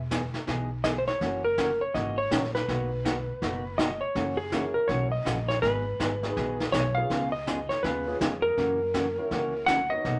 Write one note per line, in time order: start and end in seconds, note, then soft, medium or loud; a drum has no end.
0.00 0.32 E1 medium
0.11 0.22 E3 medium
0.11 0.22 B3 medium
0.11 0.22 D#4 medium
0.11 0.23 G#4 medium
0.11 kick soft
0.11 snare medium
0.11 hi-hat pedal medium
0.34 snare soft
0.47 1.06 B1 medium
0.47 0.69 E3 medium
0.47 0.69 B3 medium
0.47 0.69 D#4 medium
0.47 0.69 G#4 medium
0.47 brush sweep soft
0.47 kick soft
0.47 snare soft
0.84 0.96 E3 medium
0.84 0.96 B3 medium
0.84 0.96 D#4 medium
0.84 0.96 G#4 medium
0.84 0.89 D#5 medium
0.84 kick soft
0.84 snare medium
0.84 hi-hat pedal medium
0.98 1.07 C5 medium
1.07 1.42 C#5 medium
1.07 snare soft
1.21 1.80 F#1 medium
1.21 1.42 C#3 medium
1.21 1.43 E3 medium
1.21 1.43 A#3 medium
1.21 1.43 C#4 medium
1.21 1.43 F#4 medium
1.21 brush sweep medium
1.21 kick soft
1.21 snare soft
1.44 1.82 A#4 medium
1.58 1.69 C#3 medium
1.58 1.69 E3 medium
1.58 1.70 A#3 medium
1.58 1.70 C#4 medium
1.58 1.70 F#4 medium
1.58 kick soft
1.58 snare medium
1.58 hi-hat pedal soft
1.81 1.95 C#5 medium
1.94 2.26 G#1 medium
1.94 2.16 C#3 medium
1.94 2.16 E3 medium
1.94 2.16 A#3 medium
1.94 2.16 C#4 medium
1.94 2.16 F#4 medium
1.94 2.18 D#5 medium
1.94 brush sweep medium
1.94 kick soft
1.94 snare soft
2.18 2.54 C#5 medium
2.31 2.63 A#1 medium
2.31 2.42 C#3 medium
2.31 2.42 E3 medium
2.31 2.43 A#3 medium
2.31 2.43 C#4 medium
2.31 2.43 F#4 medium
2.31 kick soft
2.31 snare medium
2.31 hi-hat pedal medium
2.44 snare soft
2.55 3.82 B4 medium
2.55 snare soft
2.56 snare soft
2.68 3.27 B1 medium
2.68 2.89 B2 soft
2.68 2.89 F#3 medium
2.68 2.90 A#3 medium
2.68 2.90 D#4 medium
2.68 2.90 F#4 medium
2.68 brush sweep soft
2.68 kick soft
2.68 snare soft
3.04 3.16 B2 medium
3.04 3.16 F#3 medium
3.04 3.16 A#3 medium
3.04 3.16 D#4 medium
3.04 3.17 F#4 medium
3.04 kick soft
3.04 snare medium
3.04 hi-hat pedal medium
3.42 4.01 F#1 medium
3.42 3.63 B2 soft
3.42 3.63 F#3 soft
3.42 3.63 A#3 medium
3.42 3.64 D#4 medium
3.42 3.64 F#4 medium
3.42 brush sweep medium
3.42 kick soft
3.42 snare soft
3.78 3.90 B2 medium
3.78 3.90 F#3 medium
3.78 3.90 A#3 medium
3.78 3.90 D#4 medium
3.78 3.91 F#4 medium
3.78 4.02 D#5 medium
3.78 kick soft
3.78 snare medium
3.78 hi-hat pedal medium
4.01 4.39 C#5 medium
4.15 4.74 F#1 medium
4.15 4.37 C#3 medium
4.15 4.37 E3 medium
4.15 4.37 A#3 medium
4.15 4.37 C#4 medium
4.15 4.37 F#4 medium
4.15 brush sweep soft
4.15 kick soft
4.15 snare soft
4.37 4.72 G#4 medium
4.52 4.63 C#3 medium
4.52 4.64 E3 medium
4.52 4.64 A#3 medium
4.52 5.07 C#4 medium
4.52 4.64 C#4 medium
4.52 5.08 E4 medium
4.52 5.08 F#4 medium
4.52 4.64 F#4 medium
4.52 5.08 A#4 medium
4.52 kick soft
4.52 snare medium
4.52 hi-hat pedal medium
4.74 4.89 A#4 medium
4.88 5.20 B1 medium
4.88 5.10 C#3 medium
4.88 5.10 E3 medium
4.88 5.10 A#3 medium
4.88 5.10 C#4 medium
4.88 5.11 F#4 medium
4.88 5.11 C#5 medium
4.88 brush sweep soft
4.88 kick soft
4.88 snare soft
5.12 5.50 D#5 medium
5.25 5.57 A#1 medium
5.25 5.37 C#3 medium
5.25 5.37 E3 medium
5.25 5.37 A#3 medium
5.25 5.37 C#4 medium
5.25 5.37 F#4 medium
5.25 kick soft
5.25 snare medium
5.25 hi-hat pedal medium
5.48 5.61 C#5 medium
5.48 snare soft
5.62 5.92 G#1 medium
5.62 5.84 D#3 medium
5.62 5.84 F#3 medium
5.62 5.84 B3 medium
5.62 5.84 D#4 medium
5.62 5.84 G#4 medium
5.62 6.72 B4 medium
5.62 brush sweep medium
5.62 kick soft
5.62 snare soft
6.00 6.31 G#1 medium
6.00 6.11 D#3 medium
6.00 6.11 F#3 medium
6.00 6.11 B3 medium
6.00 6.11 D#4 medium
6.00 6.11 G#4 medium
6.00 kick soft
6.00 snare medium
6.00 hi-hat pedal medium
6.23 6.70 B3 medium
6.23 6.71 D#4 medium
6.23 6.71 F#4 medium
6.23 6.71 G#4 medium
6.23 snare soft
6.36 6.68 A#1 medium
6.36 6.58 D#3 medium
6.36 6.58 F#3 medium
6.36 6.58 B3 medium
6.36 6.58 D#4 medium
6.36 6.58 G#4 medium
6.36 brush sweep soft
6.36 kick soft
6.36 snare soft
6.60 snare medium
6.72 7.04 B1 medium
6.72 6.85 D#3 medium
6.72 6.85 F#3 medium
6.72 6.85 B3 medium
6.72 6.85 D#4 medium
6.72 6.85 G#4 medium
6.72 6.97 C#5 medium
6.72 kick soft
6.72 snare medium
6.72 hi-hat pedal medium
6.95 7.09 B3 medium
6.95 7.09 C#4 medium
6.95 7.09 F4 medium
6.95 7.09 G#4 medium
6.95 7.32 F5 loud
7.10 7.69 C#2 medium
7.10 7.32 C#3 medium
7.10 7.32 G#3 medium
7.10 7.32 B3 medium
7.10 7.32 F4 medium
7.10 7.32 G#4 medium
7.10 brush sweep soft
7.10 kick soft
7.10 snare soft
7.32 7.71 D#5 loud
7.47 7.58 C#3 medium
7.47 7.58 G#3 medium
7.47 7.58 B3 medium
7.47 7.59 F4 medium
7.47 7.59 G#4 medium
7.47 kick soft
7.47 snare medium
7.47 hi-hat pedal medium
7.69 7.82 C#5 medium
7.69 snare soft
7.83 8.15 D#2 medium
7.83 8.05 C#3 medium
7.83 8.05 G#3 medium
7.83 8.06 B3 medium
7.83 8.06 F4 medium
7.83 8.06 G#4 medium
7.83 8.17 B4 medium
7.83 brush sweep soft
7.83 kick soft
7.83 snare soft
8.07 8.55 B3 medium
8.07 8.55 C#4 medium
8.07 8.55 F4 medium
8.07 8.55 G#4 medium
8.21 8.52 F2 medium
8.21 8.32 C#3 medium
8.21 8.32 G#3 medium
8.21 8.32 B3 medium
8.21 8.32 F4 medium
8.21 8.32 G#4 medium
8.21 kick soft
8.21 snare medium
8.21 hi-hat pedal medium
8.42 9.71 A#4 medium
8.57 9.16 F#2 medium
8.57 8.79 C#3 medium
8.57 8.79 E3 medium
8.57 8.79 A#3 medium
8.57 8.79 C#4 medium
8.57 8.79 F#4 medium
8.57 brush sweep medium
8.57 kick soft
8.57 snare soft
8.94 9.05 C#3 medium
8.94 9.05 E3 medium
8.94 9.06 A#3 medium
8.94 9.06 C#4 medium
8.94 9.06 F#4 medium
8.94 kick soft
8.94 snare medium
8.94 hi-hat pedal soft
9.18 9.65 A#3 medium
9.18 9.65 C#4 medium
9.18 9.66 E4 medium
9.18 9.66 F#4 medium
9.31 9.90 C#2 medium
9.31 9.53 C#3 medium
9.31 9.53 E3 medium
9.31 9.53 A#3 medium
9.31 9.53 C#4 medium
9.31 9.53 F#4 medium
9.31 brush sweep soft
9.31 kick soft
9.31 snare soft
9.66 9.79 C#3 medium
9.66 9.79 E3 medium
9.66 9.79 A#3 medium
9.66 9.80 C#4 medium
9.66 9.80 F#4 medium
9.66 9.91 F#5 loud
9.66 kick soft
9.66 snare medium
9.66 hi-hat pedal medium
9.90 10.19 B3 medium
9.90 10.19 C#4 medium
9.90 10.19 D#4 medium
9.90 10.19 F#4 medium
9.90 10.19 D#5 loud
10.05 10.19 B1 medium
10.05 10.19 B2 medium
10.05 10.19 F#3 medium
10.05 10.19 A#3 medium
10.05 10.19 D#4 medium
10.05 10.19 F#4 medium
10.05 brush sweep medium
10.05 kick soft
10.05 snare soft